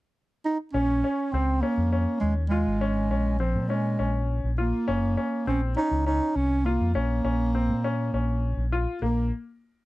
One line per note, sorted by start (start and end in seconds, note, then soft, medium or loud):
0.45 0.59 D#4 medium
0.73 1.01 A#1 medium
0.73 1.33 C#4 medium
0.73 0.98 C#4 medium
1.04 1.28 C#4 medium
1.32 1.60 C#2 medium
1.32 1.63 C4 medium
1.32 1.58 C4 medium
1.61 2.20 A#3 medium
1.61 1.87 C#4 medium
1.77 2.05 F2 medium
1.92 2.40 C#4 medium
2.20 2.63 D#2 medium
2.20 2.34 G#3 medium
2.49 3.35 G#3 medium
2.49 2.75 F4 medium
2.67 3.11 G#1 medium
2.81 3.05 C#4 medium
3.11 3.57 A#1 medium
3.11 3.35 C#4 medium
3.39 3.70 F3 medium
3.39 3.64 C4 medium
3.55 3.95 A#2 medium
3.69 4.28 G#3 medium
3.69 3.94 C#4 medium
3.99 4.40 A#1 medium
3.99 4.47 C#4 medium
4.44 4.71 A#1 medium
4.58 5.44 A#3 medium
4.58 4.82 F4 medium
4.88 5.15 F#1 medium
4.88 5.12 C#4 medium
5.17 5.41 C#4 medium
5.47 5.74 A#1 medium
5.47 5.71 C4 medium
5.47 5.62 C#4 medium
5.77 6.01 C#4 medium
5.77 6.04 D#4 medium
5.91 6.18 C#2 medium
6.06 6.54 C#4 medium
6.06 6.38 D#4 medium
6.36 6.76 C2 medium
6.36 6.67 C#4 medium
6.65 6.94 A#3 medium
6.65 6.90 F4 medium
6.80 6.94 F2 medium
6.94 7.22 A#1 medium
6.94 8.68 A#3 medium
6.94 7.19 C#4 medium
7.24 7.70 A#1 medium
7.24 7.48 C#4 medium
7.55 7.78 C4 medium
7.69 8.09 A#2 medium
7.84 8.08 C#4 medium
8.13 8.54 A#1 medium
8.13 8.62 C#4 medium
8.57 8.84 A#1 medium
8.72 8.96 F4 medium
9.02 9.29 A#1 medium
9.02 9.29 A#3 medium